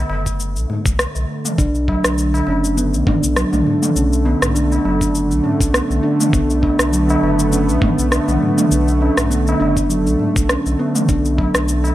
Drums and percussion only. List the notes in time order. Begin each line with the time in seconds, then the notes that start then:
0.10 tabla na
0.26 kick, shaker
0.40 shaker
0.56 shaker
0.68 tabla tin, tabla ge
0.86 kick, shaker
0.99 cross-stick, shaker
1.15 tabla tin, shaker
1.29 tabla tin
1.45 mid tom, shaker
1.58 kick, shaker
1.74 tabla tin, shaker
1.88 kick, tabla na
2.04 cross-stick, shaker
2.18 shaker
2.34 tabla na, shaker
2.47 tabla na
2.64 shaker
2.78 shaker
2.94 tabla tin, shaker
3.07 kick, mid tom, tabla ge
3.23 shaker
3.36 cross-stick, tabla tin, shaker
3.53 mid tom, shaker
3.67 tabla ge
3.83 mid tom, shaker
3.96 shaker
4.13 tabla tin, shaker
4.25 tabla na
4.42 cross-stick, tabla ge, shaker
4.56 shaker
4.72 tabla na, shaker
4.85 tabla na
5.01 kick, shaker
5.15 shaker
5.31 shaker
5.45 tabla tin, tabla ge
5.61 kick, shaker
5.74 cross-stick, shaker
5.91 tabla tin, shaker
6.04 tabla tin
6.20 mid tom, shaker
6.33 kick, shaker
6.50 tabla tin, shaker
6.63 kick, tabla na
6.79 cross-stick, shaker
6.93 shaker
7.09 tabla na, shaker
7.23 tabla na
7.39 shaker
7.52 shaker
7.69 tabla tin, shaker
7.82 kick, mid tom, tabla ge
7.99 shaker
8.12 cross-stick, tabla tin, shaker
8.28 mid tom, shaker
8.43 tabla ge
8.58 mid tom, shaker
8.71 shaker
8.88 tabla tin, shaker
9.02 tabla na
9.17 cross-stick, tabla ge, shaker
9.31 shaker
9.47 tabla na, shaker
9.62 tabla na
9.77 kick, shaker
9.90 shaker
10.07 shaker
10.19 tabla tin, tabla ge
10.36 kick, shaker
10.49 cross-stick, shaker
10.66 tabla tin, shaker
10.80 tabla tin
10.95 mid tom, shaker
11.09 kick, shaker
11.25 tabla tin, shaker
11.38 kick, tabla na
11.55 cross-stick, shaker
11.68 shaker
11.84 tabla na, shaker